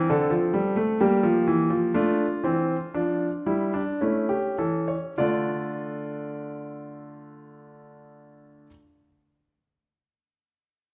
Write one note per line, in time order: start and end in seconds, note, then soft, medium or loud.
0.00 0.96 C4 medium
0.10 0.31 D3 medium
0.10 0.97 A4 medium
0.30 0.52 F3 medium
0.54 0.75 G3 medium
0.76 0.98 A3 medium
1.00 1.22 G3 medium
1.00 1.91 A#3 medium
1.00 1.91 G4 medium
1.23 1.45 F3 medium
1.48 1.70 E3 medium
1.70 1.93 F3 medium
1.94 2.25 A3 medium
1.94 2.25 D4 medium
1.94 3.97 F4 medium
2.44 2.75 E3 medium
2.44 2.75 C4 medium
2.94 3.27 F3 medium
2.94 3.27 D4 medium
3.46 3.80 G3 medium
3.46 3.72 E4 medium
3.74 4.00 D4 medium
4.01 4.37 A3 medium
4.01 5.12 C#4 medium
4.01 4.28 E4 medium
4.29 4.56 G4 medium
4.58 4.94 E3 medium
4.58 4.86 A4 medium
4.88 5.16 C#5 medium
5.18 8.66 D3 medium
5.18 8.68 A3 medium
5.18 8.69 D4 medium
5.18 8.66 F4 medium
5.18 8.66 D5 medium